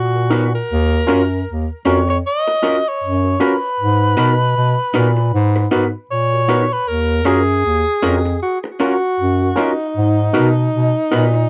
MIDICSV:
0, 0, Header, 1, 6, 480
1, 0, Start_track
1, 0, Key_signature, -6, "minor"
1, 0, Tempo, 771208
1, 442, Time_signature, 4, 2, 24, 8
1, 7155, End_track
2, 0, Start_track
2, 0, Title_t, "Alto saxophone"
2, 0, Program_c, 0, 65
2, 0, Note_on_c, 0, 66, 89
2, 316, Note_off_c, 0, 66, 0
2, 340, Note_on_c, 0, 70, 91
2, 979, Note_off_c, 0, 70, 0
2, 1164, Note_on_c, 0, 73, 81
2, 1292, Note_off_c, 0, 73, 0
2, 1305, Note_on_c, 0, 73, 94
2, 1349, Note_off_c, 0, 73, 0
2, 1409, Note_on_c, 0, 75, 110
2, 1793, Note_on_c, 0, 73, 86
2, 1802, Note_off_c, 0, 75, 0
2, 2122, Note_on_c, 0, 71, 104
2, 2131, Note_off_c, 0, 73, 0
2, 3644, Note_off_c, 0, 71, 0
2, 3803, Note_on_c, 0, 73, 95
2, 4185, Note_on_c, 0, 71, 87
2, 4195, Note_off_c, 0, 73, 0
2, 4280, Note_on_c, 0, 70, 81
2, 4289, Note_off_c, 0, 71, 0
2, 4518, Note_on_c, 0, 68, 106
2, 4528, Note_off_c, 0, 70, 0
2, 5239, Note_off_c, 0, 68, 0
2, 5242, Note_on_c, 0, 66, 88
2, 5342, Note_off_c, 0, 66, 0
2, 5477, Note_on_c, 0, 66, 95
2, 5961, Note_on_c, 0, 63, 81
2, 5970, Note_off_c, 0, 66, 0
2, 7155, Note_off_c, 0, 63, 0
2, 7155, End_track
3, 0, Start_track
3, 0, Title_t, "Clean electric guitar"
3, 0, Program_c, 1, 27
3, 191, Note_on_c, 1, 63, 74
3, 197, Note_on_c, 1, 66, 83
3, 201, Note_on_c, 1, 71, 87
3, 268, Note_off_c, 1, 63, 0
3, 271, Note_off_c, 1, 66, 0
3, 273, Note_off_c, 1, 71, 0
3, 675, Note_on_c, 1, 61, 86
3, 681, Note_on_c, 1, 66, 87
3, 683, Note_on_c, 1, 70, 93
3, 750, Note_off_c, 1, 61, 0
3, 753, Note_off_c, 1, 66, 0
3, 754, Note_off_c, 1, 70, 0
3, 1153, Note_on_c, 1, 61, 94
3, 1159, Note_on_c, 1, 66, 96
3, 1164, Note_on_c, 1, 70, 85
3, 1229, Note_off_c, 1, 61, 0
3, 1232, Note_off_c, 1, 66, 0
3, 1234, Note_off_c, 1, 70, 0
3, 1637, Note_on_c, 1, 61, 79
3, 1644, Note_on_c, 1, 66, 79
3, 1647, Note_on_c, 1, 70, 80
3, 1711, Note_off_c, 1, 61, 0
3, 1714, Note_off_c, 1, 66, 0
3, 1716, Note_off_c, 1, 70, 0
3, 2119, Note_on_c, 1, 61, 85
3, 2125, Note_on_c, 1, 66, 75
3, 2126, Note_on_c, 1, 70, 79
3, 2191, Note_off_c, 1, 61, 0
3, 2194, Note_off_c, 1, 66, 0
3, 2195, Note_off_c, 1, 70, 0
3, 2595, Note_on_c, 1, 63, 80
3, 2598, Note_on_c, 1, 66, 91
3, 2602, Note_on_c, 1, 71, 91
3, 2669, Note_off_c, 1, 63, 0
3, 2671, Note_off_c, 1, 66, 0
3, 2673, Note_off_c, 1, 71, 0
3, 3073, Note_on_c, 1, 63, 85
3, 3081, Note_on_c, 1, 66, 85
3, 3082, Note_on_c, 1, 71, 99
3, 3148, Note_off_c, 1, 63, 0
3, 3152, Note_off_c, 1, 66, 0
3, 3153, Note_off_c, 1, 71, 0
3, 3555, Note_on_c, 1, 63, 80
3, 3560, Note_on_c, 1, 66, 80
3, 3566, Note_on_c, 1, 71, 80
3, 3629, Note_off_c, 1, 63, 0
3, 3631, Note_off_c, 1, 66, 0
3, 3634, Note_off_c, 1, 71, 0
3, 4037, Note_on_c, 1, 63, 78
3, 4040, Note_on_c, 1, 66, 93
3, 4047, Note_on_c, 1, 71, 93
3, 4110, Note_off_c, 1, 63, 0
3, 4111, Note_off_c, 1, 66, 0
3, 4115, Note_off_c, 1, 71, 0
3, 4513, Note_on_c, 1, 61, 73
3, 4519, Note_on_c, 1, 66, 81
3, 4522, Note_on_c, 1, 70, 94
3, 4588, Note_off_c, 1, 61, 0
3, 4591, Note_off_c, 1, 66, 0
3, 4593, Note_off_c, 1, 70, 0
3, 4994, Note_on_c, 1, 61, 80
3, 4998, Note_on_c, 1, 66, 82
3, 5001, Note_on_c, 1, 70, 84
3, 5069, Note_off_c, 1, 61, 0
3, 5070, Note_off_c, 1, 66, 0
3, 5072, Note_off_c, 1, 70, 0
3, 5475, Note_on_c, 1, 61, 72
3, 5479, Note_on_c, 1, 66, 87
3, 5483, Note_on_c, 1, 70, 81
3, 5549, Note_off_c, 1, 61, 0
3, 5551, Note_off_c, 1, 66, 0
3, 5553, Note_off_c, 1, 70, 0
3, 5958, Note_on_c, 1, 61, 76
3, 5961, Note_on_c, 1, 66, 79
3, 5966, Note_on_c, 1, 70, 89
3, 6031, Note_off_c, 1, 61, 0
3, 6032, Note_off_c, 1, 66, 0
3, 6034, Note_off_c, 1, 70, 0
3, 6436, Note_on_c, 1, 63, 83
3, 6439, Note_on_c, 1, 66, 92
3, 6444, Note_on_c, 1, 71, 82
3, 6510, Note_off_c, 1, 63, 0
3, 6511, Note_off_c, 1, 66, 0
3, 6514, Note_off_c, 1, 71, 0
3, 6919, Note_on_c, 1, 63, 78
3, 6923, Note_on_c, 1, 66, 83
3, 6928, Note_on_c, 1, 71, 92
3, 6991, Note_off_c, 1, 63, 0
3, 6993, Note_off_c, 1, 66, 0
3, 6996, Note_off_c, 1, 71, 0
3, 7155, End_track
4, 0, Start_track
4, 0, Title_t, "Tine electric piano"
4, 0, Program_c, 2, 4
4, 98, Note_on_c, 2, 66, 39
4, 98, Note_on_c, 2, 70, 43
4, 140, Note_off_c, 2, 66, 0
4, 140, Note_off_c, 2, 70, 0
4, 187, Note_on_c, 2, 59, 86
4, 187, Note_on_c, 2, 63, 74
4, 189, Note_on_c, 2, 66, 78
4, 190, Note_on_c, 2, 70, 95
4, 289, Note_off_c, 2, 59, 0
4, 289, Note_off_c, 2, 63, 0
4, 290, Note_off_c, 2, 66, 0
4, 290, Note_off_c, 2, 70, 0
4, 665, Note_on_c, 2, 61, 85
4, 665, Note_on_c, 2, 65, 84
4, 669, Note_on_c, 2, 66, 75
4, 671, Note_on_c, 2, 70, 97
4, 768, Note_off_c, 2, 61, 0
4, 768, Note_off_c, 2, 65, 0
4, 769, Note_off_c, 2, 66, 0
4, 771, Note_off_c, 2, 70, 0
4, 1154, Note_on_c, 2, 61, 81
4, 1158, Note_on_c, 2, 66, 77
4, 1160, Note_on_c, 2, 70, 93
4, 1161, Note_on_c, 2, 65, 73
4, 1252, Note_off_c, 2, 61, 0
4, 1254, Note_off_c, 2, 66, 0
4, 1255, Note_off_c, 2, 70, 0
4, 1256, Note_off_c, 2, 65, 0
4, 1632, Note_on_c, 2, 61, 77
4, 1632, Note_on_c, 2, 65, 76
4, 1635, Note_on_c, 2, 66, 76
4, 1636, Note_on_c, 2, 70, 88
4, 1731, Note_off_c, 2, 61, 0
4, 1731, Note_off_c, 2, 65, 0
4, 1732, Note_off_c, 2, 66, 0
4, 1733, Note_off_c, 2, 70, 0
4, 2019, Note_on_c, 2, 66, 40
4, 2019, Note_on_c, 2, 70, 40
4, 2060, Note_off_c, 2, 66, 0
4, 2060, Note_off_c, 2, 70, 0
4, 2114, Note_on_c, 2, 61, 84
4, 2115, Note_on_c, 2, 66, 75
4, 2116, Note_on_c, 2, 65, 79
4, 2122, Note_on_c, 2, 70, 98
4, 2212, Note_off_c, 2, 61, 0
4, 2212, Note_off_c, 2, 65, 0
4, 2212, Note_off_c, 2, 66, 0
4, 2216, Note_off_c, 2, 70, 0
4, 2598, Note_on_c, 2, 59, 87
4, 2600, Note_on_c, 2, 63, 82
4, 2603, Note_on_c, 2, 66, 79
4, 2604, Note_on_c, 2, 70, 104
4, 2693, Note_off_c, 2, 59, 0
4, 2694, Note_off_c, 2, 63, 0
4, 2696, Note_off_c, 2, 66, 0
4, 2696, Note_off_c, 2, 70, 0
4, 3076, Note_on_c, 2, 63, 71
4, 3077, Note_on_c, 2, 59, 81
4, 3081, Note_on_c, 2, 66, 78
4, 3082, Note_on_c, 2, 70, 100
4, 3172, Note_off_c, 2, 63, 0
4, 3173, Note_off_c, 2, 59, 0
4, 3175, Note_off_c, 2, 66, 0
4, 3175, Note_off_c, 2, 70, 0
4, 3556, Note_on_c, 2, 59, 87
4, 3557, Note_on_c, 2, 63, 76
4, 3557, Note_on_c, 2, 70, 90
4, 3558, Note_on_c, 2, 66, 79
4, 3652, Note_off_c, 2, 59, 0
4, 3653, Note_off_c, 2, 63, 0
4, 3653, Note_off_c, 2, 66, 0
4, 3653, Note_off_c, 2, 70, 0
4, 3938, Note_on_c, 2, 70, 41
4, 3941, Note_on_c, 2, 66, 36
4, 3979, Note_off_c, 2, 70, 0
4, 3980, Note_off_c, 2, 66, 0
4, 4035, Note_on_c, 2, 59, 83
4, 4037, Note_on_c, 2, 66, 80
4, 4039, Note_on_c, 2, 63, 75
4, 4039, Note_on_c, 2, 70, 90
4, 4132, Note_off_c, 2, 59, 0
4, 4133, Note_off_c, 2, 66, 0
4, 4133, Note_off_c, 2, 70, 0
4, 4134, Note_off_c, 2, 63, 0
4, 4515, Note_on_c, 2, 61, 93
4, 4515, Note_on_c, 2, 65, 76
4, 4520, Note_on_c, 2, 66, 80
4, 4520, Note_on_c, 2, 70, 99
4, 4612, Note_off_c, 2, 61, 0
4, 4612, Note_off_c, 2, 65, 0
4, 4614, Note_off_c, 2, 66, 0
4, 4614, Note_off_c, 2, 70, 0
4, 4994, Note_on_c, 2, 65, 83
4, 4995, Note_on_c, 2, 61, 75
4, 4995, Note_on_c, 2, 66, 74
4, 4997, Note_on_c, 2, 70, 88
4, 5091, Note_off_c, 2, 61, 0
4, 5091, Note_off_c, 2, 65, 0
4, 5092, Note_off_c, 2, 66, 0
4, 5093, Note_off_c, 2, 70, 0
4, 5477, Note_on_c, 2, 65, 84
4, 5480, Note_on_c, 2, 61, 78
4, 5480, Note_on_c, 2, 70, 82
4, 5482, Note_on_c, 2, 66, 75
4, 5573, Note_off_c, 2, 65, 0
4, 5574, Note_off_c, 2, 61, 0
4, 5574, Note_off_c, 2, 70, 0
4, 5575, Note_off_c, 2, 66, 0
4, 5862, Note_on_c, 2, 66, 40
4, 5863, Note_on_c, 2, 70, 39
4, 5901, Note_off_c, 2, 66, 0
4, 5901, Note_off_c, 2, 70, 0
4, 5948, Note_on_c, 2, 61, 83
4, 5950, Note_on_c, 2, 65, 86
4, 5950, Note_on_c, 2, 70, 90
4, 5952, Note_on_c, 2, 66, 76
4, 6048, Note_off_c, 2, 61, 0
4, 6049, Note_off_c, 2, 65, 0
4, 6049, Note_off_c, 2, 70, 0
4, 6050, Note_off_c, 2, 66, 0
4, 6431, Note_on_c, 2, 59, 82
4, 6431, Note_on_c, 2, 63, 77
4, 6432, Note_on_c, 2, 66, 82
4, 6435, Note_on_c, 2, 70, 108
4, 6530, Note_off_c, 2, 59, 0
4, 6530, Note_off_c, 2, 63, 0
4, 6530, Note_off_c, 2, 66, 0
4, 6532, Note_off_c, 2, 70, 0
4, 6917, Note_on_c, 2, 59, 86
4, 6917, Note_on_c, 2, 63, 69
4, 6918, Note_on_c, 2, 70, 94
4, 6921, Note_on_c, 2, 66, 70
4, 7013, Note_off_c, 2, 59, 0
4, 7013, Note_off_c, 2, 63, 0
4, 7013, Note_off_c, 2, 70, 0
4, 7015, Note_off_c, 2, 66, 0
4, 7155, End_track
5, 0, Start_track
5, 0, Title_t, "Bass clarinet"
5, 0, Program_c, 3, 71
5, 0, Note_on_c, 3, 46, 72
5, 384, Note_off_c, 3, 46, 0
5, 449, Note_on_c, 3, 39, 98
5, 655, Note_off_c, 3, 39, 0
5, 685, Note_on_c, 3, 42, 72
5, 893, Note_off_c, 3, 42, 0
5, 926, Note_on_c, 3, 39, 75
5, 1046, Note_off_c, 3, 39, 0
5, 1165, Note_on_c, 3, 41, 84
5, 1373, Note_off_c, 3, 41, 0
5, 1887, Note_on_c, 3, 42, 79
5, 2094, Note_off_c, 3, 42, 0
5, 2363, Note_on_c, 3, 44, 98
5, 2571, Note_off_c, 3, 44, 0
5, 2603, Note_on_c, 3, 47, 73
5, 2811, Note_off_c, 3, 47, 0
5, 2843, Note_on_c, 3, 47, 84
5, 2963, Note_off_c, 3, 47, 0
5, 3083, Note_on_c, 3, 46, 93
5, 3291, Note_off_c, 3, 46, 0
5, 3322, Note_on_c, 3, 44, 112
5, 3531, Note_off_c, 3, 44, 0
5, 3565, Note_on_c, 3, 44, 79
5, 3684, Note_off_c, 3, 44, 0
5, 3801, Note_on_c, 3, 46, 72
5, 4219, Note_off_c, 3, 46, 0
5, 4281, Note_on_c, 3, 39, 84
5, 4524, Note_on_c, 3, 42, 92
5, 4533, Note_off_c, 3, 39, 0
5, 4731, Note_off_c, 3, 42, 0
5, 4765, Note_on_c, 3, 39, 76
5, 4885, Note_off_c, 3, 39, 0
5, 5005, Note_on_c, 3, 41, 82
5, 5212, Note_off_c, 3, 41, 0
5, 5724, Note_on_c, 3, 42, 76
5, 5931, Note_off_c, 3, 42, 0
5, 6205, Note_on_c, 3, 44, 92
5, 6412, Note_off_c, 3, 44, 0
5, 6446, Note_on_c, 3, 47, 91
5, 6653, Note_off_c, 3, 47, 0
5, 6686, Note_on_c, 3, 47, 87
5, 6806, Note_off_c, 3, 47, 0
5, 6927, Note_on_c, 3, 46, 87
5, 7133, Note_off_c, 3, 46, 0
5, 7155, End_track
6, 0, Start_track
6, 0, Title_t, "Muted clean electric guitar strokes"
6, 1300, Note_on_c, 9, 29, 42
6, 1362, Note_off_c, 9, 29, 0
6, 1540, Note_on_c, 9, 29, 42
6, 1603, Note_off_c, 9, 29, 0
6, 3216, Note_on_c, 9, 29, 45
6, 3278, Note_off_c, 9, 29, 0
6, 3460, Note_on_c, 9, 29, 46
6, 3522, Note_off_c, 9, 29, 0
6, 5138, Note_on_c, 9, 29, 38
6, 5200, Note_off_c, 9, 29, 0
6, 5377, Note_on_c, 9, 29, 37
6, 5439, Note_off_c, 9, 29, 0
6, 7058, Note_on_c, 9, 29, 38
6, 7120, Note_off_c, 9, 29, 0
6, 7155, End_track
0, 0, End_of_file